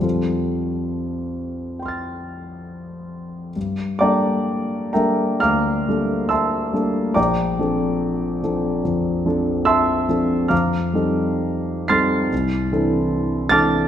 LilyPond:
\new Staff \with { instrumentName = "Grand piano" } { \time 4/4 \key g \dorian \tempo 4 = 70 << { r2 <g'' c''' f''' a'''>2 | r8 <d'' g'' bes'' d'''>4 <bes' e'' g'' bes''>8 <f'' bes'' d''' f'''>4 <e'' a'' c''' e'''>4 | <d'' g'' bes'' d'''>2. <e'' a'' c''' e'''>4 | <f'' bes'' d''' f'''>4. <c''' f''' a''' c''''>2 <a'' d''' f''' a'''>8 | } \\ { <f, g c' f' a'>1 | g,8 <g bes d' a'>4 <g bes d' a'>8 d,8 <g bes d' a'>4 <g bes d' a'>8 | bes,,8 <f c' d' a'>4 <f c' d' a'>8 f,8 <f c' d' a'>4 <f c' d' a'>8 | f,8 <g c' ees' a'>4 <g c' ees' a'>8 c,8 <e c' d' a'>4 <e c' d' a'>8 | } >> }